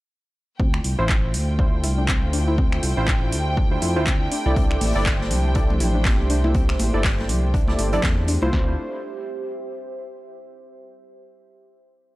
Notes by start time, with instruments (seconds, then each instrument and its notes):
0.60 analog synth bass D2, analog synth pad A3 D4 E4 F4 C5, synth arpeggio sound C4, ambient pad G4, violin section G5, kick
0.74 ambient pad C5, finger snap
0.84 analog synth bass C2, open hi-hat
0.99 analog synth bass A1, synth keys E4 F4 C5
1.09 kick, clap
1.34 analog synth bass D2, open hi-hat
1.57 synth arpeggio sound D4, synth keys E4 F4 C5, ambient pad E5, kick
1.84 analog synth bass C2, synth arpeggio sound E4, open hi-hat
1.98 synth arpeggio sound D4
2.08 synth arpeggio sound C4, kick, clap
2.23 analog synth bass D2
2.33 synth arpeggio sound D4, open hi-hat
2.48 synth arpeggio sound E4
2.58 synth arpeggio sound C4, kick
2.72 finger snap
2.83 analog synth bass C2, open hi-hat
2.97 analog synth bass A1, synth keys E4 F4 C5
3.08 kick, clap
3.32 analog synth bass D2, open hi-hat
3.57 synth arpeggio sound D4, kick
3.71 synth keys E4 F4 C5
3.82 analog synth bass F2, synth arpeggio sound E4, open hi-hat
3.96 analog synth bass D2, synth arpeggio sound D4, synth keys E4 F4 C5
4.07 synth arpeggio sound C4, kick, clap
4.32 analog synth pad A3 G4 C5, synth arpeggio sound D4, open hi-hat
4.46 analog synth bass C2, synth keys E4 A4 D5, synth arpeggio sound E4
4.56 analog synth bass C2, synth arpeggio sound C4, kick, closed hi-hat
4.71 finger snap
4.81 analog synth bass A1, open hi-hat, high conga
4.95 analog synth bass G1, synth keys E4 A4 D5
5.06 kick, snare, clap, closed hi-hat
5.20 snare, high conga
5.31 analog synth bass C2, closed hi-hat, open hi-hat, low conga
5.55 synth arpeggio sound D4, synth keys E4 A4 D5, kick, closed hi-hat
5.70 high conga, low conga
5.80 analog synth bass A1, synth arpeggio sound E4, closed hi-hat, open hi-hat, low conga
5.95 synth arpeggio sound D4
6.05 synth arpeggio sound C4, kick, snare, clap, closed hi-hat, high conga
6.19 analog synth bass C2
6.30 synth arpeggio sound D4, closed hi-hat, open hi-hat
6.44 synth arpeggio sound E4, high conga
6.54 synth arpeggio sound C4, kick, closed hi-hat
6.69 finger snap, snare
6.79 analog synth bass A1, closed hi-hat, open hi-hat, high conga
6.94 analog synth bass G1, synth keys E4 A4 D5
7.04 kick, snare, clap, closed hi-hat
7.18 snare, high conga
7.29 analog synth bass C2, closed hi-hat, open hi-hat, low conga
7.54 synth arpeggio sound D4, kick, closed hi-hat
7.68 synth keys E4 A4 D5, snare, high conga
7.79 analog synth bass G1, synth arpeggio sound E4, closed hi-hat, open hi-hat
7.93 synth arpeggio sound D4, synth keys E4 A4 D5, closed hi-hat, low conga
8.03 analog synth bass E2, synth arpeggio sound C4, kick, snare, clap, closed hi-hat, high conga
8.28 synth arpeggio sound D4, closed hi-hat, open hi-hat
8.42 analog synth bass C2, synth keys E4 F4 C5, synth arpeggio sound E4, high conga
8.53 analog synth bass D2, analog synth pad A3 D4 E4 F4 C5, synth arpeggio sound C4, synth keys E4 F4 C5, ambient pad G4, kick, snare
8.62 ambient pad C5
8.70 ambient pad E5